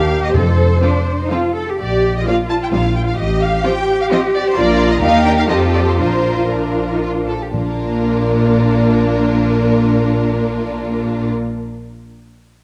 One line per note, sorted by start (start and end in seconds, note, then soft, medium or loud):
0.00 0.27 D#2 medium
0.00 0.34 G4 medium
0.00 0.23 F5 medium
0.23 0.35 D#5 medium
0.34 0.74 F2 soft
0.34 1.03 F2 medium
0.34 0.78 A4 medium
0.34 1.29 C5 medium
0.83 0.91 F3 soft
0.83 0.91 C4 soft
0.83 1.17 D4 medium
0.83 0.91 F4 soft
0.83 0.91 A4 soft
1.21 1.32 D#4 soft
1.31 1.39 F3 soft
1.31 1.39 C4 soft
1.31 1.55 F4 soft
1.31 1.39 F4 soft
1.31 1.40 A4 soft
1.55 1.67 A4 soft
1.69 1.78 G4 soft
1.79 2.18 A#1 soft
1.79 2.23 G4 soft
1.79 2.12 D5 medium
2.17 2.27 D#5 soft
2.26 2.34 F3 soft
2.26 2.34 A#3 soft
2.26 3.18 F4 soft
2.26 2.36 F4 soft
2.26 2.35 D5 soft
2.26 2.35 F5 medium
2.50 2.54 A5 medium
2.63 2.67 G5 soft
2.72 3.10 A#1 soft
2.72 2.80 G3 soft
2.72 2.81 C4 soft
2.72 2.82 D#4 soft
2.72 2.81 C5 soft
2.72 2.95 F5 medium
2.96 3.00 G5 medium
3.08 3.19 F5 medium
3.18 3.57 A1 medium
3.18 4.53 G4 medium
3.18 3.41 D#5 medium
3.42 3.64 F5 medium
3.64 3.73 F3 soft
3.64 3.73 C4 soft
3.64 3.72 F4 soft
3.64 3.73 C5 soft
3.64 3.99 G5 medium
4.01 4.05 F5 medium
4.10 4.19 F3 medium
4.10 4.19 C4 medium
4.10 4.18 F4 medium
4.10 4.18 C5 medium
4.10 4.20 D#5 medium
4.35 4.45 D5 medium
4.47 4.56 C5 medium
4.55 4.97 A#1 medium
4.55 4.98 A#3 soft
4.55 4.98 D4 medium
4.55 5.01 F4 medium
4.55 4.98 F4 medium
4.55 4.98 A#4 medium
4.55 4.90 D5 medium
4.92 5.02 D#5 medium
5.01 5.48 D#2 medium
5.01 5.47 A#3 soft
5.01 5.24 D#4 soft
5.01 5.48 D#4 medium
5.01 5.48 G4 medium
5.01 5.47 A#4 medium
5.01 5.24 F5 medium
5.25 5.33 D4 soft
5.25 5.30 G5 medium
5.39 5.43 F5 medium
5.48 5.98 F2 soft
5.48 5.98 F3 medium
5.48 5.97 C4 soft
5.48 5.98 F4 soft
5.48 5.98 G4 medium
5.48 5.98 A4 soft
5.48 5.58 D#5 medium
5.75 5.79 D5 medium
5.88 5.93 C5 soft
5.99 7.32 A#1 soft
5.99 6.49 F3 soft
5.99 6.50 D4 soft
5.99 7.28 F4 soft
5.99 6.49 F4 soft
5.99 6.50 A#4 soft
5.99 6.49 C5 medium
6.50 7.30 F3 soft
6.50 6.86 D4 soft
6.50 7.30 D4 soft
6.50 7.28 A#4 soft
6.91 7.03 D#4 soft
7.03 7.11 F4 soft
7.28 7.40 A4 soft
7.44 7.55 G4 soft
7.53 11.29 A#1 soft
7.53 11.29 A#2 soft
7.53 11.85 A#2 soft
7.53 11.29 A#3 soft
7.53 11.29 D4 soft
7.53 11.30 D4 soft
7.53 11.30 F4 soft
7.53 11.30 A#4 medium